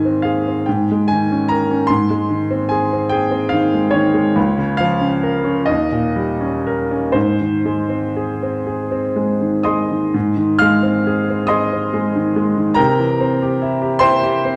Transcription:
Already playing: G#2 D#3 G#3 G#5
0.05 C4
0.22 G#4 F5
0.47 C4
0.66 G#2 G5
0.92 G#3
1.08 G#5
1.12 D#3
1.32 C#4
1.48 A#4 A#5
1.71 C#4
1.87 G#2 C6
2.10 G#3
2.31 D#3
2.51 C4
2.69 G#4 G#5
2.93 C4
3.09 G#4 G5
3.31 C4
3.49 D#3 F5
3.74 G#3
3.91 D#3 C#5
4.14 G#3
4.36 C#2
4.58 C#3
4.77 F3 F5
5.01 C#4
5.23 A#4
5.44 C#4
5.66 D#2 D#5
5.92 A#2
6.16 G3
6.41 C#4
6.67 A#4
6.91 C#4
7.12 G#2 C5
7.40 D#3
7.65 G#3
7.89 C4
8.16 G#4
8.43 C4
8.67 G#4
8.91 C4
9.16 G#3
9.41 D#3
9.63 G#3 D#5 C6 D#6
9.91 D#3
10.14 G#2
10.37 D#3
10.59 G#3 F5 F6
10.83 C4
11.07 G#4
11.30 C4
11.47 G#4 D#5 C6 D#6
11.73 C4
11.94 G#3
12.16 D#3
12.36 G#3
12.57 D#3
12.74 A#4 G5 A#5
12.78 C3
12.99 E3
13.21 C4
13.42 G4
13.62 E4
13.82 G4
13.99 E4 C5 G5 C6
14.23 G4
14.45 C4

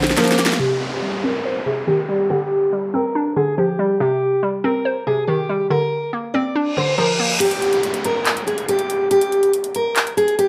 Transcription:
Already playing: A#1 D3 A#3 C4 D4
0.03 snare, closed hi-hat
0.10 snare
0.17 F3 A#3, snare, closed hi-hat
0.24 snare, closed hi-hat
0.31 snare
0.39 A#3, snare, closed hi-hat
0.46 snare
0.53 snare
0.59 C3 G4, downlifter
1.02 G3
1.24 C4 A#4
1.45 C5
1.66 C3 G#4
1.87 D#3 G4
2.09 G3
2.30 D3 G4
2.73 G3
2.94 C4 A#4
3.15 D4
3.36 D3 G#4
3.58 F3 G4
3.79 G3
4.00 C3 G4
4.43 G3
4.64 C4 A#4
4.85 C5
5.07 C3 G#4
5.27 D#3 G4
5.49 G3
5.70 D3 A#4
6.13 A#3
6.34 C4 D5
6.55 D4, reverse cymbal
6.77 D3 C5
6.98 F3 A#4
7.20 A#3
7.40 G4, closed hi-hat, crash, downlifter
7.51 closed hi-hat
7.62 closed hi-hat
7.73 closed hi-hat
7.83 closed hi-hat
7.94 closed hi-hat
8.04 A#4, closed hi-hat
8.25 clap, closed hi-hat
8.37 closed hi-hat
8.47 G#4, closed hi-hat
8.58 closed hi-hat
8.69 G4, closed hi-hat
8.79 closed hi-hat
8.90 closed hi-hat
9.11 G4, closed hi-hat
9.21 closed hi-hat
9.32 closed hi-hat
9.43 closed hi-hat
9.53 closed hi-hat
9.64 closed hi-hat
9.75 A#4, closed hi-hat
9.96 clap, closed hi-hat
10.07 closed hi-hat
10.17 G#4, closed hi-hat
10.28 closed hi-hat
10.39 G4, closed hi-hat

